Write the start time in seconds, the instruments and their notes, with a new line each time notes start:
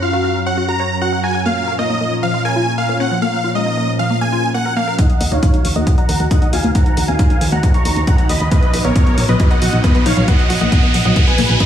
Already playing: analog synth pad F#2 F#3 C#4 A#4
0.02 synth arpeggio sound F4, supersaw synth F5
0.13 synth arpeggio sound F#4
0.24 synth arpeggio sound F#4
0.46 synth arpeggio sound C#4, supersaw synth F#5
0.57 synth arpeggio sound F#4
0.68 synth arpeggio sound F#4, supersaw synth A#5
0.80 synth arpeggio sound C#5
1.01 synth arpeggio sound F#4, supersaw synth F#5
1.13 synth arpeggio sound F#5
1.24 synth arpeggio sound F#4, supersaw synth G#5
1.35 synth arpeggio sound F#5
1.46 analog synth pad A#2 F3, synth arpeggio sound A#3, supersaw synth F5
1.68 synth arpeggio sound A#4
1.79 synth arpeggio sound A#3, supersaw synth D#5
1.90 synth arpeggio sound A#3
2.01 synth arpeggio sound A#3
2.23 synth arpeggio sound F3, supersaw synth F5
2.34 synth arpeggio sound F4
2.45 synth arpeggio sound A#4, supersaw synth G#5
2.56 synth arpeggio sound F4
2.78 synth arpeggio sound A#3, supersaw synth F5
2.89 synth arpeggio sound A#3
3.00 synth arpeggio sound C#4, supersaw synth F#5
3.11 synth arpeggio sound F3
3.22 synth arpeggio sound A#3, supersaw synth F5
3.44 synth arpeggio sound F4
3.55 synth arpeggio sound G#3, supersaw synth D#5
3.66 synth arpeggio sound A#3
3.77 synth arpeggio sound A#3
3.99 synth arpeggio sound F3, supersaw synth F5
4.10 synth arpeggio sound A#3
4.21 synth arpeggio sound A#3, supersaw synth G#5
4.32 synth arpeggio sound F4
4.54 synth arpeggio sound A#3, supersaw synth F#5
4.65 synth arpeggio sound A#4
4.76 synth arpeggio sound A#3, supersaw synth F5
4.87 synth arpeggio sound A#4
4.98 analog synth pad D#3 D#4 F#4 A#4, synth arpeggio sound D#4, supersaw synth D#5 F#5, kick, closed hi-hat, riser
5.10 closed hi-hat
5.21 analog synth bass D#2, synth arpeggio sound D#5, open hi-hat
5.32 analog synth bass D#2, synth arpeggio sound D#4, supersaw synth C#5 F5, closed hi-hat
5.43 synth arpeggio sound D#4, kick, closed hi-hat
5.54 synth arpeggio sound D#4, closed hi-hat
5.65 analog synth bass D#2, open hi-hat
5.76 analog synth bass D#2, synth arpeggio sound A#3, supersaw synth D#5 F#5, closed hi-hat
5.87 synth arpeggio sound A#4, kick, closed hi-hat
5.98 synth arpeggio sound D#5, supersaw synth F#5 A#5, closed hi-hat
6.09 analog synth bass D#2, synth arpeggio sound A#4, open hi-hat
6.20 analog synth bass D#2, closed hi-hat
6.31 synth arpeggio sound D#4, supersaw synth D#5 F#5, kick, closed hi-hat
6.42 synth arpeggio sound D#4, closed hi-hat
6.53 analog synth bass D#2, synth arpeggio sound F#4, supersaw synth F5 G#5, open hi-hat
6.64 analog synth bass D#2, synth arpeggio sound A#3, closed hi-hat
6.75 synth arpeggio sound D#4, supersaw synth F#5 A#5, kick, closed hi-hat
6.86 closed hi-hat
6.97 analog synth bass D#2, synth arpeggio sound A#4, open hi-hat
7.08 analog synth bass D#2, synth arpeggio sound C#4, supersaw synth F5 G#5, closed hi-hat
7.19 synth arpeggio sound D#4, kick, closed hi-hat
7.30 synth arpeggio sound D#4, closed hi-hat
7.41 analog synth bass D#2, open hi-hat
7.52 analog synth bass D#2, synth arpeggio sound A#3, supersaw synth F#5 A#5, closed hi-hat
7.63 synth arpeggio sound D#4, kick, closed hi-hat
7.74 synth arpeggio sound D#4, supersaw synth A#5 C#6, closed hi-hat
7.85 analog synth bass D#2, synth arpeggio sound A#4, open hi-hat
7.96 analog synth bass D#2, closed hi-hat
8.07 synth arpeggio sound D#4, supersaw synth F#5 A#5, kick, closed hi-hat
8.18 synth arpeggio sound D#5, closed hi-hat
8.29 analog synth bass D#2, synth arpeggio sound D#4, supersaw synth D#5 B5, open hi-hat
8.40 analog synth bass D#2, synth arpeggio sound D#5, closed hi-hat
8.51 analog synth pad F#3 B3, synth arpeggio sound B3, supersaw synth B4 D#5, kick, closed hi-hat
8.63 closed hi-hat
8.74 analog synth bass B1, synth arpeggio sound B4, open hi-hat
8.85 analog synth bass B1, synth arpeggio sound B3, supersaw synth A#4 C#5, closed hi-hat
8.96 synth arpeggio sound B3, kick, closed hi-hat
9.07 synth arpeggio sound B3, closed hi-hat
9.18 analog synth bass B1, open hi-hat
9.29 analog synth bass B1, synth arpeggio sound F#3, supersaw synth B4 D#5, closed hi-hat
9.40 synth arpeggio sound F#4, kick, closed hi-hat
9.51 synth arpeggio sound B4, supersaw synth D#5 F#5, closed hi-hat
9.62 analog synth bass B1, synth arpeggio sound F#4, open hi-hat
9.73 analog synth bass B1, closed hi-hat
9.84 synth arpeggio sound B3, supersaw synth B4 D#5, kick, closed hi-hat
9.95 synth arpeggio sound B3, closed hi-hat
10.06 analog synth bass B1, synth arpeggio sound D#4, supersaw synth C#5 F5, open hi-hat
10.17 analog synth bass B1, synth arpeggio sound F#3, closed hi-hat
10.28 synth arpeggio sound B3, supersaw synth D#5 F#5, kick, closed hi-hat
10.39 closed hi-hat
10.50 analog synth bass B1, synth arpeggio sound F#4, open hi-hat
10.61 analog synth bass B1, synth arpeggio sound A#3, supersaw synth D#5 F#5, closed hi-hat
10.72 synth arpeggio sound B3, kick, closed hi-hat
10.83 synth arpeggio sound B3, closed hi-hat
10.94 analog synth bass B1, open hi-hat
11.05 analog synth bass B1, synth arpeggio sound F#3, supersaw synth D#5 F#5, closed hi-hat
11.16 synth arpeggio sound B3, kick, closed hi-hat
11.27 synth arpeggio sound B3, supersaw synth B4 G#5, closed hi-hat
11.38 analog synth bass B1, synth arpeggio sound A#3, open hi-hat
11.49 analog synth bass B1, closed hi-hat
11.60 synth arpeggio sound B2, supersaw synth D#5 B5, kick, closed hi-hat